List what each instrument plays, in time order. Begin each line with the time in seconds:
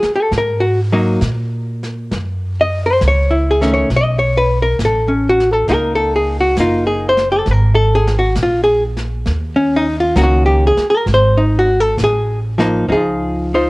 Already playing: hollow-body jazz guitar G#4
0.03 muted upright bass stroke, snare
0.15 hollow-body jazz guitar A4
0.31 upright bass G#2, brush sweep, snare
0.38 hollow-body jazz guitar A#4
0.60 hollow-body jazz guitar F#4
0.92 hollow-body jazz guitar F#3 A#3 D#4
1.21 upright bass A#2, snare, hi-hat pedal
1.83 snare
2.11 upright bass F#2, brush sweep, snare
2.61 hollow-body jazz guitar D#5
2.86 hollow-body jazz guitar C5
3.01 upright bass C#2, snare, hi-hat pedal
3.08 hollow-body jazz guitar C#5
3.31 hollow-body jazz guitar E4
3.51 hollow-body jazz guitar G#4
3.61 hollow-body jazz guitar D#3 A3 C#4, snare
3.74 hollow-body jazz guitar C#5
3.90 upright bass B1, brush sweep, snare
3.96 hollow-body jazz guitar D#5
4.19 hollow-body jazz guitar C#5
4.37 hollow-body jazz guitar B4
4.62 hollow-body jazz guitar A#4
4.79 upright bass A1, snare, hi-hat pedal
4.85 hollow-body jazz guitar A4
5.08 hollow-body jazz guitar C#4
5.29 hollow-body jazz guitar F#4
5.40 snare
5.53 hollow-body jazz guitar A4
5.68 upright bass C#2, hollow-body jazz guitar A#3 D#4 F4, brush sweep, snare
5.74 hollow-body jazz guitar A#4
5.95 hollow-body jazz guitar A4
6.16 hollow-body jazz guitar G#4
6.41 hollow-body jazz guitar F#4
6.57 upright bass F#1, hollow-body jazz guitar A#3 D#4 F4, snare, hi-hat pedal
6.87 hollow-body jazz guitar G#4
7.09 hollow-body jazz guitar C5
7.17 snare
7.32 hollow-body jazz guitar A4
7.46 upright bass G#1, brush sweep, snare
7.51 hollow-body jazz guitar A#4
7.75 hollow-body jazz guitar A4
7.95 hollow-body jazz guitar G#4
8.07 snare
8.19 hollow-body jazz guitar F#4
8.36 upright bass A#1, snare, hi-hat pedal
8.43 hollow-body jazz guitar F4
8.64 hollow-body jazz guitar G#4
8.97 snare
9.26 upright bass D#2, brush sweep, snare
9.56 hollow-body jazz guitar C#4
9.76 hollow-body jazz guitar D#4
10.00 hollow-body jazz guitar F4
10.16 upright bass C#2, hollow-body jazz guitar D#3 A#3 C#4 F#4, snare, hi-hat pedal
10.23 hollow-body jazz guitar F#4
10.46 hollow-body jazz guitar G4
10.67 hollow-body jazz guitar G#4
10.77 muted upright bass stroke, snare
10.90 hollow-body jazz guitar A#4
11.06 upright bass G#1, brush sweep, snare
11.14 hollow-body jazz guitar C5
11.37 hollow-body jazz guitar D#4
11.59 hollow-body jazz guitar F#4
11.80 hollow-body jazz guitar A4
11.97 upright bass A1, snare, hi-hat pedal
12.04 hollow-body jazz guitar G#4
12.58 hollow-body jazz guitar F3 A#3 D#4, snare
12.88 upright bass C#2, hollow-body jazz guitar F3 A#3 D#4, brush sweep
12.92 hollow-body jazz guitar D#4 F4 G#4
13.54 hollow-body jazz guitar D#4 F4 C5